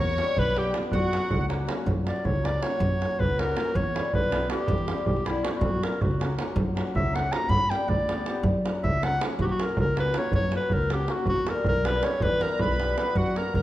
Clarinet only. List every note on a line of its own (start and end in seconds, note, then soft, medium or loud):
0.00 0.40 C#5 loud
0.39 0.60 B4 loud
0.58 0.75 G4 loud
0.94 1.48 F#4 loud
2.08 2.27 D5 medium
2.25 2.47 C#5 loud
2.45 2.64 D5 medium
2.62 3.21 C#5 loud
3.19 3.41 B4 loud
3.39 3.77 A#4 loud
3.75 4.14 C#5 loud
4.14 4.48 B4 loud
4.51 5.03 G4 medium
5.07 5.29 G4 medium
5.27 5.46 E4 medium
5.44 5.53 F#4 medium
5.52 5.59 E4 medium
5.57 5.85 F#4 medium
5.84 6.03 A#4 medium
6.02 6.39 F#4 medium
6.96 7.17 E5 loud
7.15 7.34 F#5 loud
7.32 7.51 A#5 loud
7.49 7.71 B5 loud
7.70 7.91 G5 loud
7.89 8.44 D5 medium
8.83 9.06 E5 loud
9.04 9.21 F#5 loud
9.41 9.45 F#4 loud
9.41 9.53 G4 medium
9.51 9.64 F#4 loud
9.63 9.79 A#4 medium
9.80 9.97 A#4 loud
9.99 10.15 B4 loud
10.18 10.33 C#5 loud
10.34 10.53 C#5 loud
10.57 10.75 B4 loud
10.73 10.95 A#4 loud
10.93 11.13 G4 medium
11.11 11.28 F#4 medium
11.28 11.50 F#4 loud
11.49 11.67 A#4 loud
11.68 11.88 A#4 loud
11.86 12.06 B4 loud
12.04 12.24 C#5 loud
12.22 12.44 B4 loud
12.42 12.63 A#4 medium
12.61 12.98 B4 loud
12.98 13.19 B4 medium
13.17 13.38 F#4 loud
13.37 13.54 A#4 medium
13.55 13.62 A#4 loud